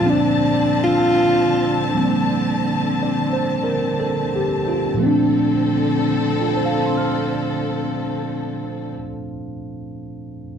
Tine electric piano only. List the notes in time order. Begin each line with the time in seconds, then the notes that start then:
0.01 A#2 F3
0.05 C4 D4
1.94 F3 G3 A#3 C4
3.03 D5
3.33 C5
3.64 A#4
4.00 A4
4.36 G4
4.68 F4
4.94 A#2 F3
5.00 A3 C4
5.06 D4
6.41 F4
6.49 A4
6.56 C5
6.65 F5
6.75 A5
6.86 C6
6.97 F6